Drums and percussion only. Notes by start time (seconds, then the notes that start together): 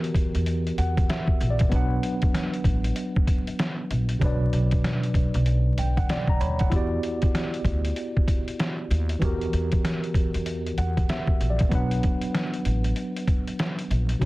0.04 closed hi-hat
0.14 kick, closed hi-hat
0.35 closed hi-hat
0.46 closed hi-hat
0.67 closed hi-hat
0.78 closed hi-hat
0.97 kick, closed hi-hat
1.10 snare, closed hi-hat
1.28 kick
1.41 closed hi-hat
1.59 kick, closed hi-hat
1.72 kick, closed hi-hat
2.03 closed hi-hat
2.22 kick, closed hi-hat
2.35 snare, closed hi-hat
2.54 closed hi-hat
2.64 kick, closed hi-hat
2.84 closed hi-hat
2.96 closed hi-hat
3.16 kick
3.27 kick, closed hi-hat
3.47 closed hi-hat
3.59 snare, closed hi-hat
3.91 closed hi-hat
4.09 closed hi-hat
4.21 kick, closed hi-hat
4.53 closed hi-hat
4.71 kick, closed hi-hat
4.84 snare, closed hi-hat
5.03 closed hi-hat
5.14 kick, closed hi-hat
5.34 closed hi-hat
5.46 closed hi-hat
5.78 closed hi-hat
5.97 kick, closed hi-hat
6.09 snare, closed hi-hat
6.27 kick
6.41 closed hi-hat
6.59 kick, closed hi-hat
6.72 kick, closed hi-hat
7.03 closed hi-hat
7.22 kick, closed hi-hat
7.35 snare, closed hi-hat
7.54 closed hi-hat
7.65 kick, closed hi-hat
7.85 closed hi-hat
7.96 closed hi-hat
8.17 kick
8.28 kick, closed hi-hat
8.48 closed hi-hat
8.60 snare, closed hi-hat
8.91 closed hi-hat
9.09 closed hi-hat
9.22 kick, closed hi-hat
9.41 closed hi-hat
9.53 closed hi-hat
9.72 kick, closed hi-hat
9.85 snare, closed hi-hat
10.04 closed hi-hat
10.14 kick, closed hi-hat
10.34 closed hi-hat
10.46 closed hi-hat
10.66 closed hi-hat
10.78 closed hi-hat
10.97 kick, closed hi-hat
11.09 snare, closed hi-hat
11.27 kick
11.41 closed hi-hat
11.59 kick, closed hi-hat
11.71 kick, closed hi-hat
11.91 closed hi-hat
12.03 kick, closed hi-hat
12.21 closed hi-hat
12.35 snare, closed hi-hat
12.54 closed hi-hat
12.65 closed hi-hat
12.84 closed hi-hat
12.96 closed hi-hat
13.16 closed hi-hat
13.27 kick, closed hi-hat
13.48 closed hi-hat
13.59 snare, closed hi-hat
13.79 closed hi-hat
13.91 closed hi-hat
14.09 closed hi-hat
14.22 kick, closed hi-hat